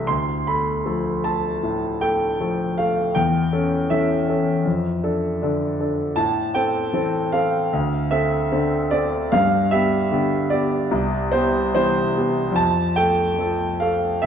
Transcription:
Already playing: C2 E3 A3 A4 E5
0.07 D2 C6
0.47 A3 A4 B5
0.85 F3 A3 A4
1.24 A3 A4 A5
1.63 A2
2.01 A3 A4 G5
2.40 F3 A3 A4
2.78 A3 A4 F5
3.15 E2 G5
3.53 C#4 A4
3.90 E3 C#4 A4 E5
4.28 C#4 A4
4.65 F2
5.04 D4 A4
5.42 D3 D4 A4
5.80 D4 A4
6.16 A2 A5
6.54 C4 A4 G5
6.93 E3 C4 A4
7.32 C4 A4 F5
7.73 D2
8.11 C4 A4 E5
8.52 D3 C4 A4
8.91 C4 A4 D5
9.32 G2 F5
9.71 B3 G4 E5
10.11 D3 B3 G4
10.50 B3 G4 D5
10.91 C2
11.32 B3 G4 C5
11.75 E3 B3 G4 C5
12.17 B3 G4
12.52 F2 A5
12.96 A3 A4 G5
13.39 F3 A3 A4
13.80 A3 A4 F5
14.22 D2 E5

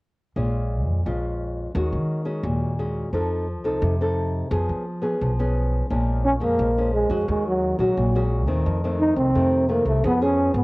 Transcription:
0.36 A#1 A#2 G#3 C#4 F4
0.87 F2
1.06 A#1 F2 G#3 C#4 F4
1.75 D#2 D#3 G#3 C#4 F#4
1.92 D#3
2.25 G#3 C#4 F#4
2.43 D#2 A#2
2.79 G#3 C#4 F#4
3.13 F2 F3 C4 D#4 A4
3.63 C2 C4 D#4 A4
3.82 F2 C3
4.01 C4 D#4 A4
4.51 F2 F3 B3 C#4 G#4
4.69 F3
5.02 B3 C#4 G#4
5.21 B1 F3
5.39 B3 C#4 G#4
5.90 A#1 A#2 F3 G#3 C#4
6.25 C#4
6.40 F2 F3 G#3 A#3 C#4
6.59 A#1 F2
6.78 F3 G#3 C#4
6.94 G#3
7.09 F2 G#3 C#4 F#4
7.28 D#2 D#3 G#3
7.48 F#3
7.79 A#1 F#3 G#3 C#4 F#4
7.97 A#1 A#2
8.15 G#3 C#4 F#4
8.47 D#2 D#3 A3 C4
8.66 F2
8.84 D#3 A3 C4
9.00 D#4
9.16 C2 C4
9.35 F2 C3 D#3 A3 C4
9.69 D#3 A3 A#3 C4
9.85 C2 A3
10.04 F2 F3 B3 C#4 G#4
10.21 B3 C#4 G#4
10.54 G#1 B3

